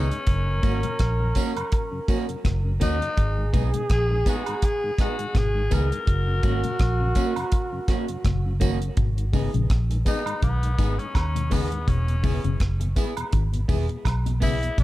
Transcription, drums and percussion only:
0.11 closed hi-hat soft
0.27 kick loud
0.27 closed hi-hat medium
0.63 kick loud
0.63 closed hi-hat medium
0.63 tambourine soft
0.83 closed hi-hat soft
0.99 kick medium
0.99 cross-stick loud
0.99 closed hi-hat medium
1.35 kick medium
1.35 closed hi-hat medium
1.35 tambourine medium
1.56 closed hi-hat soft
1.56 high woodblock medium
1.72 kick loud
1.72 closed hi-hat medium
2.08 kick loud
2.08 closed hi-hat medium
2.08 tambourine medium
2.29 closed hi-hat soft
2.45 kick loud
2.45 cross-stick loud
2.45 closed hi-hat medium
2.81 kick medium
2.81 closed hi-hat medium
2.81 tambourine medium
3.02 closed hi-hat soft
3.17 kick loud
3.17 closed hi-hat medium
3.54 kick loud
3.54 closed hi-hat medium
3.54 tambourine soft
3.74 closed hi-hat medium
3.90 kick medium
3.90 cross-stick loud
3.90 closed hi-hat medium
4.26 kick medium
4.26 closed hi-hat medium
4.26 tambourine medium
4.46 closed hi-hat soft
4.46 high woodblock medium
4.62 kick loud
4.62 closed hi-hat medium
4.99 kick loud
4.99 cross-stick medium
4.99 closed hi-hat medium
4.99 tambourine soft
5.19 closed hi-hat soft
5.35 kick loud
5.35 cross-stick loud
5.35 closed hi-hat medium
5.71 kick medium
5.71 closed hi-hat medium
5.71 tambourine medium
5.92 closed hi-hat soft
6.07 kick loud
6.07 closed hi-hat medium
6.43 kick loud
6.43 closed hi-hat medium
6.43 tambourine soft
6.64 closed hi-hat medium
6.79 kick loud
6.79 cross-stick loud
6.79 closed hi-hat medium
7.15 kick medium
7.15 closed hi-hat medium
7.15 tambourine medium
7.36 closed hi-hat soft
7.36 high woodblock medium
7.52 kick loud
7.52 closed hi-hat medium
7.88 kick loud
7.88 cross-stick medium
7.88 closed hi-hat medium
7.88 tambourine medium
8.08 closed hi-hat soft
8.25 kick loud
8.25 cross-stick loud
8.25 closed hi-hat loud
8.61 kick medium
8.61 closed hi-hat medium
8.61 tambourine medium
8.82 closed hi-hat soft
8.97 kick loud
8.97 closed hi-hat medium
9.18 closed hi-hat soft
9.33 kick loud
9.33 open hi-hat soft
9.33 tambourine soft
9.54 closed hi-hat soft
9.70 kick loud
9.70 cross-stick loud
9.70 closed hi-hat medium
9.91 closed hi-hat medium
10.06 kick medium
10.06 closed hi-hat medium
10.06 tambourine medium
10.26 closed hi-hat soft
10.26 high woodblock medium
10.42 kick loud
10.42 closed hi-hat medium
10.63 closed hi-hat medium
10.78 kick loud
10.78 closed hi-hat medium
10.78 tambourine medium
10.99 closed hi-hat soft
11.15 kick loud
11.15 cross-stick loud
11.15 closed hi-hat medium
11.15 high woodblock medium
11.36 closed hi-hat medium
11.51 kick medium
11.51 open hi-hat medium
11.51 tambourine medium
11.72 closed hi-hat soft
11.88 kick loud
11.88 closed hi-hat medium
12.08 closed hi-hat soft
12.24 kick loud
12.24 open hi-hat soft
12.24 tambourine medium
12.44 closed hi-hat soft
12.60 kick loud
12.60 cross-stick loud
12.60 closed hi-hat medium
12.81 closed hi-hat medium
12.96 kick medium
12.96 closed hi-hat medium
12.96 tambourine medium
13.17 closed hi-hat medium
13.17 high woodblock medium
13.33 kick loud
13.33 closed hi-hat medium
13.53 closed hi-hat soft
13.69 kick loud
13.69 open hi-hat soft
13.69 tambourine medium
13.89 closed hi-hat soft
14.05 kick loud
14.05 cross-stick loud
14.05 closed hi-hat loud
14.05 high woodblock medium
14.26 closed hi-hat medium
14.42 kick medium
14.42 open hi-hat medium
14.42 tambourine medium
14.63 closed hi-hat soft
14.78 kick loud
14.78 closed hi-hat medium

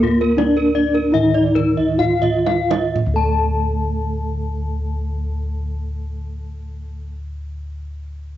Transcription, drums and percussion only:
0.04 kendang slap soft
0.04 kendang low medium
0.38 kendang slap soft
0.38 kendang high medium
0.75 kendang slap soft
0.95 kendang slap soft
1.14 kendang slap soft
1.35 kendang slap soft
1.56 kendang slap soft
1.56 kendang low medium
1.77 kendang low medium
2.00 kendang low medium
2.23 kendang low medium
2.47 kendang high medium
2.71 kendang high medium
2.95 kendang low medium

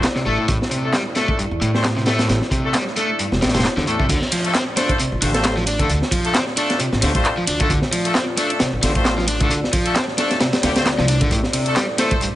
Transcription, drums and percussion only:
0.03 snare loud
0.03 clap loud
0.03 closed hi-hat medium
0.15 snare soft
0.48 kick loud
0.48 closed hi-hat medium
0.62 snare medium
0.71 closed hi-hat medium
0.93 snare loud
0.93 clap loud
0.93 closed hi-hat medium
1.15 snare medium
1.15 closed hi-hat medium
1.28 kick medium
1.39 closed hi-hat medium
1.62 closed hi-hat medium
1.74 snare soft
1.84 snare loud
1.84 clap loud
1.84 closed hi-hat medium
1.97 snare soft
2.06 snare loud
2.06 closed hi-hat medium
2.19 snare loud
2.19 closed hi-hat medium
2.29 snare loud
2.29 closed hi-hat medium
2.42 snare soft
2.51 kick medium
2.51 closed hi-hat medium
2.74 snare loud
2.74 clap loud
2.74 closed hi-hat medium
2.87 snare soft
2.96 closed hi-hat medium
3.19 closed hi-hat medium
3.32 snare soft
3.42 snare medium
3.42 closed hi-hat medium
3.48 snare medium
3.48 closed hi-hat medium
3.54 snare medium
3.54 closed hi-hat medium
3.60 snare medium
3.60 closed hi-hat medium
3.64 snare loud
3.64 clap loud
3.64 closed hi-hat medium
3.77 snare medium
3.87 closed hi-hat medium
4.00 kick loud
4.09 kick loud
4.09 closed hi-hat soft
4.09 closed hi-hat medium
4.09 crash medium
4.22 snare soft
4.32 closed hi-hat medium
4.32 ride medium
4.45 closed hi-hat soft
4.54 snare loud
4.54 clap loud
4.54 closed hi-hat soft
4.54 closed hi-hat medium
4.77 snare soft
4.77 closed hi-hat medium
4.77 ride medium
4.89 kick medium
4.89 closed hi-hat soft
5.00 closed hi-hat soft
5.00 closed hi-hat medium
5.22 closed hi-hat medium
5.22 ride medium
5.34 snare soft
5.34 closed hi-hat soft
5.44 snare loud
5.44 clap loud
5.44 closed hi-hat medium
5.44 closed hi-hat soft
5.56 snare soft
5.67 closed hi-hat medium
5.67 ride medium
5.79 kick medium
5.79 closed hi-hat soft
5.90 closed hi-hat soft
5.90 closed hi-hat medium
6.02 snare soft
6.11 kick medium
6.11 closed hi-hat medium
6.11 ride medium
6.25 closed hi-hat soft
6.34 snare loud
6.34 clap loud
6.34 closed hi-hat medium
6.34 closed hi-hat soft
6.47 snare soft
6.57 closed hi-hat medium
6.57 ride medium
6.70 snare soft
6.70 closed hi-hat soft
6.80 closed hi-hat soft
6.80 closed hi-hat medium
6.93 snare soft
7.02 snare medium
7.02 closed hi-hat medium
7.02 ride medium
7.15 kick medium
7.15 closed hi-hat soft
7.25 clap loud
7.25 closed hi-hat soft
7.47 closed hi-hat medium
7.47 ride medium
7.60 kick loud
7.60 closed hi-hat soft
7.70 kick loud
7.70 closed hi-hat soft
7.70 closed hi-hat medium
7.82 snare soft
7.93 closed hi-hat medium
7.93 ride medium
8.05 closed hi-hat soft
8.15 snare loud
8.15 clap loud
8.15 closed hi-hat soft
8.15 closed hi-hat medium
8.37 closed hi-hat medium
8.37 ride medium
8.50 closed hi-hat soft
8.60 snare loud
8.60 closed hi-hat medium
8.60 closed hi-hat soft
8.83 snare soft
8.83 closed hi-hat medium
8.83 ride medium
8.95 kick medium
8.95 closed hi-hat soft
9.05 snare loud
9.05 clap loud
9.05 closed hi-hat soft
9.05 closed hi-hat medium
9.19 snare soft
9.28 closed hi-hat medium
9.28 ride medium
9.40 kick loud
9.40 closed hi-hat soft
9.51 closed hi-hat soft
9.51 closed hi-hat medium
9.64 snare soft
9.73 kick medium
9.73 closed hi-hat medium
9.73 ride medium
9.86 closed hi-hat soft
9.95 snare loud
9.95 clap loud
9.95 closed hi-hat medium
9.95 closed hi-hat soft
10.08 snare soft
10.18 snare soft
10.18 closed hi-hat medium
10.18 ride medium
10.31 snare soft
10.31 closed hi-hat soft
10.40 snare loud
10.40 closed hi-hat soft
10.40 closed hi-hat medium
10.53 snare loud
10.53 closed hi-hat medium
10.63 snare loud
10.63 closed hi-hat medium
10.63 ride medium
10.76 snare loud
10.76 closed hi-hat soft
10.76 closed hi-hat medium
10.85 snare loud
10.85 clap loud
10.85 closed hi-hat medium
10.85 closed hi-hat soft
10.98 snare medium
11.08 closed hi-hat medium
11.08 ride medium
11.21 kick loud
11.21 closed hi-hat soft
11.31 kick loud
11.31 closed hi-hat soft
11.31 closed hi-hat medium
11.43 snare medium
11.53 closed hi-hat medium
11.53 ride medium
11.66 closed hi-hat soft
11.76 snare loud
11.76 clap loud
11.76 closed hi-hat soft
11.76 closed hi-hat medium
11.98 snare medium
11.98 closed hi-hat medium
11.98 ride medium
12.11 kick loud
12.11 closed hi-hat soft
12.21 closed hi-hat soft
12.21 closed hi-hat medium

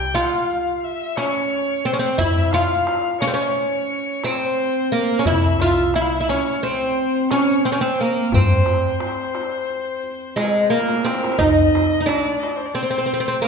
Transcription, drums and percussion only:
0.16 darbuka tek medium
0.49 darbuka ka soft
1.17 darbuka tek medium
1.52 darbuka ka soft
2.19 darbuka dum medium
2.53 darbuka tek medium
2.87 darbuka tek medium
3.21 darbuka tek medium
3.56 darbuka ka soft
4.24 darbuka tek medium
4.58 darbuka ka soft
5.25 darbuka dum medium
5.60 darbuka tek medium
5.94 darbuka tek medium
6.29 darbuka tek medium
6.63 darbuka ka soft
7.31 darbuka tek medium
7.64 darbuka ka soft
8.32 darbuka dum medium
8.66 darbuka tek medium
9.00 darbuka tek medium
9.35 darbuka tek medium
9.70 darbuka ka soft
10.04 darbuka ka soft
10.37 darbuka tek medium
10.72 darbuka tek soft
10.80 darbuka ka medium
10.89 darbuka tek medium
10.97 darbuka ka medium
11.06 darbuka tek medium
11.15 darbuka ka medium
11.24 darbuka tek medium
11.32 darbuka ka medium
11.41 darbuka dum medium
11.75 darbuka tek medium
12.09 darbuka tek medium
12.43 darbuka tek medium
12.78 darbuka ka soft
13.12 darbuka ka soft

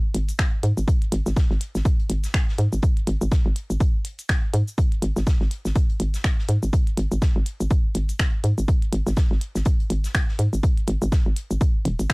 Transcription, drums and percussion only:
0.15 closed hi-hat medium
0.29 closed hi-hat soft
0.29 shaker medium
0.39 finger snap loud
0.39 kick loud
0.39 snare loud
0.39 closed hi-hat medium
0.39 shaker soft
0.63 closed hi-hat loud
0.63 closed hi-hat medium
0.77 shaker medium
0.88 kick loud
0.88 closed hi-hat medium
0.88 shaker soft
1.02 closed hi-hat soft
1.12 closed hi-hat medium
1.12 closed hi-hat loud
1.26 snare soft
1.26 shaker soft
1.36 kick loud
1.36 snare loud
1.36 closed hi-hat medium
1.36 shaker soft
1.50 snare soft
1.61 closed hi-hat loud
1.61 closed hi-hat medium
1.75 snare medium
1.75 shaker medium
1.85 kick loud
1.85 closed hi-hat medium
1.85 shaker soft
2.00 closed hi-hat soft
2.10 closed hi-hat loud
2.10 closed hi-hat medium
2.24 snare medium
2.24 closed hi-hat soft
2.24 shaker medium
2.34 finger snap loud
2.34 kick loud
2.34 snare loud
2.34 closed hi-hat medium
2.34 shaker soft
2.48 snare medium
2.58 closed hi-hat medium
2.58 closed hi-hat loud
2.73 shaker medium
2.82 kick loud
2.82 closed hi-hat medium
2.82 shaker soft
2.97 closed hi-hat soft
3.07 closed hi-hat medium
3.07 closed hi-hat loud
3.21 shaker medium
3.31 kick loud
3.31 snare loud
3.31 closed hi-hat loud
3.31 shaker soft
3.56 closed hi-hat medium
3.70 shaker medium
3.80 kick loud
3.80 closed hi-hat medium
3.80 shaker soft
4.05 closed hi-hat loud
4.05 closed hi-hat medium
4.19 closed hi-hat soft
4.19 shaker medium
4.29 finger snap loud
4.29 kick loud
4.29 snare loud
4.29 closed hi-hat medium
4.29 shaker soft
4.54 closed hi-hat loud
4.54 closed hi-hat medium
4.68 shaker medium
4.78 kick loud
4.78 closed hi-hat medium
4.78 shaker soft
4.92 closed hi-hat soft
5.02 closed hi-hat loud
5.02 closed hi-hat medium
5.16 snare soft
5.16 shaker medium
5.27 kick loud
5.27 snare loud
5.27 closed hi-hat medium
5.27 shaker soft
5.40 snare soft
5.51 closed hi-hat medium
5.65 snare medium
5.65 shaker medium
5.75 kick loud
5.75 closed hi-hat medium
5.75 shaker soft
5.89 closed hi-hat soft
6.00 closed hi-hat loud
6.00 closed hi-hat medium
6.14 snare medium
6.14 closed hi-hat soft
6.14 shaker medium
6.24 finger snap loud
6.24 kick loud
6.24 snare loud
6.24 closed hi-hat medium
6.24 shaker soft
6.39 snare medium
6.48 closed hi-hat medium
6.63 shaker medium
6.73 kick loud
6.73 closed hi-hat medium
6.73 shaker soft
6.87 closed hi-hat soft
6.97 closed hi-hat medium
7.12 shaker medium
7.22 kick loud
7.22 snare loud
7.22 closed hi-hat medium
7.22 shaker soft
7.46 closed hi-hat medium
7.60 shaker medium
7.70 kick loud
7.70 closed hi-hat medium
7.70 shaker soft
7.95 closed hi-hat medium
8.09 closed hi-hat soft
8.09 shaker medium
8.19 finger snap loud
8.19 kick loud
8.19 snare loud
8.19 closed hi-hat medium
8.19 shaker soft
8.44 closed hi-hat medium
8.44 closed hi-hat loud
8.58 shaker medium
8.68 kick loud
8.68 closed hi-hat medium
8.68 shaker soft
8.82 closed hi-hat soft
8.93 closed hi-hat loud
8.93 closed hi-hat medium
9.07 snare soft
9.07 shaker medium
9.17 kick loud
9.17 snare loud
9.17 closed hi-hat medium
9.17 shaker soft
9.32 snare soft
9.41 closed hi-hat medium
9.55 snare medium
9.55 shaker medium
9.65 kick loud
9.65 closed hi-hat medium
9.65 shaker soft
9.80 closed hi-hat soft
9.90 closed hi-hat medium
10.04 snare medium
10.04 closed hi-hat soft
10.04 shaker medium
10.14 finger snap loud
10.14 kick loud
10.14 snare loud
10.14 closed hi-hat medium
10.14 shaker soft
10.28 snare medium
10.39 closed hi-hat medium
10.53 shaker medium
10.63 kick loud
10.63 closed hi-hat medium
10.63 shaker soft
10.77 closed hi-hat soft
10.87 closed hi-hat medium
11.02 shaker medium
11.12 kick loud
11.12 snare loud
11.12 closed hi-hat medium
11.12 shaker soft
11.36 closed hi-hat medium
11.51 shaker medium
11.61 kick loud
11.61 closed hi-hat medium
11.61 shaker soft
11.85 closed hi-hat medium
11.99 closed hi-hat soft
11.99 shaker medium
12.10 finger snap loud
12.10 kick loud
12.10 snare medium
12.10 closed hi-hat medium
12.10 shaker soft

